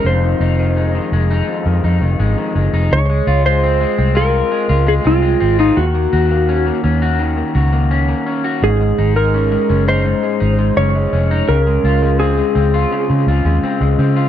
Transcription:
X:1
M:4/4
L:1/16
Q:1/4=84
K:Db
V:1 name="Electric slide guitar"
c6 z8 z2 | d3 c4 B4 A F3 E | G6 z8 z2 | A3 B4 c4- c d4 |
B4 A8 z4 |]
V:2 name="Clean electric guitar"
F,, E, E E, A, E, A, E F,, E, E E, A, E, A, E | z A, F A, C A, C F2 A, F A, C A, C F | E, B, G B, D B, D G E, B, G B, D B, D G | A,, A, E A, D A, D E A,, A, E A, D A, D E |
D, A, F A, C A, C F D, A, F A, C A, C F |]
V:3 name="Fingered electric bass" clef=bass
F,,,2 F,,,4 F,,,2 z F,, F,, F,,, A,,, z G,,, F,,, | D,,2 D,,4 C,,3 z D,,2 C,,2 A,,,2 | E,,2 E,,4 E,,4 D,,4 z2 | A,,,2 A,,,4 G,,,3 z A,,,2 G,,,2 F,,,2 |
D,,2 D,,4 D,,2 z D, D,, E,, z D,, D,2 |]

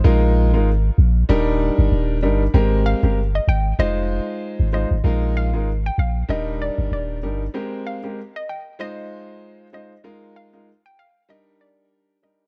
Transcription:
X:1
M:4/4
L:1/16
Q:"Swing 16ths" 1/4=96
K:Eb
V:1 name="Synth pluck"
z16 | z2 f z2 e g z e3 z3 e z | z2 f z2 g f z e z d z d3 z | z2 f z2 e g z e3 z3 e z |
z2 f z2 g f z e z d z3 e z |]
V:2 name="Grand piano"
[A,EFB]3 [A,EFB] z4 [G,DEB]6 [G,DEB] z | [A,CGB]3 [A,CGB] z4 [A,EFc]6 [A,EFc] z | [A,EFB]3 [A,EFB] z4 [G,DEB]6 [G,DEB] z | [A,CGB]3 [A,CGB] z4 [A,EFc]6 [A,EFc] z |
[A,EFB]3 [A,EFB] z4 [G,DEB]6 [G,DEB] z |]
V:3 name="Sub bass" clef=bass
B,,,3 A,,,3 B,,,2 E,,,3 G,,, E,,,2 G,,,2 | A,,,3 G,,,3 A,,,2 F,,,3 z2 A,,,2 A,,, | B,,,3 A,,,3 B,,,2 E,,,3 G,,, E,,,2 G,,,2 | z16 |
z16 |]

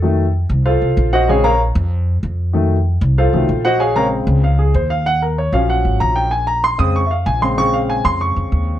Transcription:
X:1
M:4/4
L:1/8
Q:1/4=191
K:Bbm
V:1 name="Grand piano"
=A2 z2 [FAcf]3 [Gceg] | [Adfa] [Bdfb] z6 | z4 [F=Acf]3 [Gceg] | [Adfa] [Bdfb] z2 f A c f |
g B d f g2 b =g | a b c' e' d' [=ef] a c' | d' f a c' d'4 |]
V:2 name="Grand piano" clef=bass
[E,G,=A,] z6 z | [D,A,C] z6 z | [E,G,=A,] z4 [E,G,A,] z2 | z [D,A,C]3 z4 |
z3 [F,G,D]4- [F,G,D] | z3 [D,A,C] z3 [D,A,C] | [D,A,C]8 |]
V:3 name="Upright bass" clef=bass
F,,3 C,,2 C,, B,,,2- | B,,,3 F,,3 F,,2- | F,,3 C,,2 C,, B,,,2- | B,,,3 D,,3 E,,2- |
E,,3 B,,,2 A,,, B,,,2- | B,,,3 F,,3 B,,,2- | B,,,3 F,,2 F,, E,,2 |]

